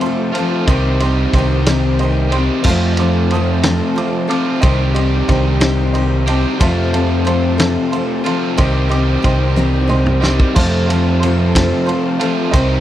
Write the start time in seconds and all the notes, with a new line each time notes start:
Already playing: F2 C3 F3 A3 C4 F4 A4 C5
0.00 F3 A3 C5 F5 A5 C6, ride
0.05 C4 A4
0.32 F2 C3 F3 A3 C4 F4 C5 F5 A5 C6, ride
0.36 F3 A3 C4 A4
0.66 C2 C3 D#3 G3 C4 D#4 G4 C5 D#5 G5 C6, kick, ride
0.70 D#4
1.00 D#4 G4 C5 D#5 G5 C6, ride
1.05 C4
1.33 C2 D#3 C4 C5 D#5 G5 C6, kick, ride
1.38 D#4 G4
1.66 C3 D#3 C4 D#4 G4, snare, ride
1.99 D#3 C4 C5 D#5 G5 C6, ride
2.03 D#4 G4
2.30 C3 D#3 G3 C4 G4 C5 D#5 G5 C6, ride
2.34 D#4 G4
2.38 C4
2.64 F2 C3 C4 F4 A4 C5 F5 A5 C6, kick, crash
2.68 F3 A3 C4 A4
2.97 C4 A4 C5 F5 A5 D6, ride
3.01 F3 A3
3.30 F3 C5 F5 A5 D#6, ride
3.35 A3 C4 A4
3.63 F2 C3 F3 A3 C4 A4, snare, ride
3.96 F3 A3 C4 A4 C5 F5 A5 D6, ride
4.28 C3 F3 A3 C4 F4 A4 C5 F5 A5 D6, ride
4.32 F2
4.61 C2 C3 D#3 G3 C4 D#4 G4 C5 D#5 G5 C6, kick, ride
4.94 D#4 G4 C5 D#5 G5 C6, ride
4.99 C4
5.28 C2 D#3 C4 D#4 C5 D#5 G5 C6, kick, ride
5.32 G4
5.60 C3 D#3 C4 D#4 G4, snare, ride
5.93 D#3 C4 D#4 C5 D#5 G5 C6, ride
5.98 G4
6.27 C3 D#3 G3 C4 D#4 G4 C5 D#5 G5 A5, ride
6.60 F2 C3 F3 A3 C4 F4 A4 C5 F5 A5 C6, kick, ride
6.93 F3 A3 C4 A4 C5 F5 A5 C6, ride
7.25 F3 A3 C4 A4 C5 F5 A5 C6, ride
7.58 F2 C3 F3 A3 C4 A4, snare, ride
7.91 F3 A3 C5 F5 A5 C6, ride
7.95 C4 A4
8.24 F2 C3 F3 A3 C4 F4 A4 C5 F5 A5 C6, ride
8.57 C2 C3 D#3 G3 C4 D#4 G4 C5 D#5 G5 C6, kick, ride
8.89 C4 D#4 G4 C5 D#5 G5 D6, ride
9.22 C2 D#3 C4 D#4 G4 C5 D#5 G5 C6, kick, ride
9.56 C3 D#3 C4 D#4 G4, high tom
9.87 D#3 C4 D#4 G4 C5 D#5 G5 C6, mid tom
10.06 mid tom
10.21 C3 D#3 G3 D#4 G4 C5 D#5 G5 C6, snare
10.26 C4
10.40 kick
10.55 F2 C3 F3 A3 C4 F4 A4 C5 F5 A5 C6, kick, crash
10.86 A4 C5 F5 A5 C6, ride
10.92 F3 A3 C4
11.20 F3 C5 F5 A5 C6, ride
11.24 A3 C4 A4
11.55 F2 C3 F3 A3 C4 A4, kick, snare, ride
11.86 F3 A3 C4 A4 C5 F5 A5 C6, ride
12.19 C3 C4 F4 A4 C5 F5 A5 C6, ride
12.23 F2 F3 A3
12.51 C2 C3 D#3 G3 G4 C5 D#5 G5 C6, kick, ride
12.55 C4 D#4 G4 C5